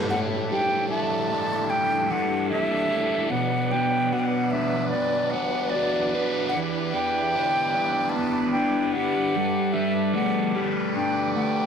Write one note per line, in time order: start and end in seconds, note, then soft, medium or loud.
0.09 2.11 A2 medium
0.09 3.28 A3 medium
0.09 3.29 D4 medium
0.09 3.28 E4 medium
0.09 3.28 G4 medium
0.09 3.28 A4 medium
0.09 0.19 F#5 loud
0.51 1.70 G3 medium
0.51 0.88 G5 medium
0.89 2.49 E4 medium
0.89 1.71 A5 loud
1.32 2.10 D4 medium
1.70 3.32 G3 medium
1.70 2.12 G5 loud
2.11 4.53 D4 medium
2.11 2.50 F#5 medium
2.50 3.31 E4 medium
2.50 3.32 E5 loud
2.91 3.31 A4 medium
3.30 5.32 B2 medium
3.30 6.50 F#3 medium
3.30 6.50 B3 medium
3.30 11.66 D4 medium
3.30 11.66 B4 medium
3.30 6.50 D5 medium
3.30 3.73 F#5 loud
3.71 4.93 B3 medium
3.71 4.14 G5 medium
4.12 5.73 F#4 medium
4.12 4.21 F#5 medium
4.19 4.27 G5 medium
4.25 4.52 F#5 medium
4.51 5.33 D4 medium
4.51 4.89 E5 medium
4.89 6.93 B3 medium
4.89 5.32 D5 medium
5.30 6.58 D4 medium
5.30 5.71 F#5 medium
5.70 6.31 D5 medium
5.75 6.54 F#4 medium
6.15 9.65 B4 medium
6.49 6.58 F#5 loud
6.53 8.55 E3 medium
6.53 9.32 E4 medium
6.53 11.66 G4 medium
6.53 11.66 D5 medium
6.89 8.11 G5 loud
6.94 8.14 B3 medium
7.35 8.94 G4 medium
7.74 8.55 D4 medium
8.10 8.51 A5 loud
8.15 9.35 B3 medium
8.51 10.94 D4 medium
8.51 8.94 G5 medium
8.92 10.17 G4 medium
8.92 9.74 F#5 loud
9.35 9.74 G3 medium
9.35 11.66 A4 medium
9.73 11.66 G3 medium
9.73 10.14 E5 medium
10.14 11.34 A3 medium
10.14 10.65 F#5 medium
10.55 11.66 G4 medium
10.95 11.66 D4 medium
10.95 11.33 G5 medium
11.35 11.66 A3 medium
11.35 11.66 G5 medium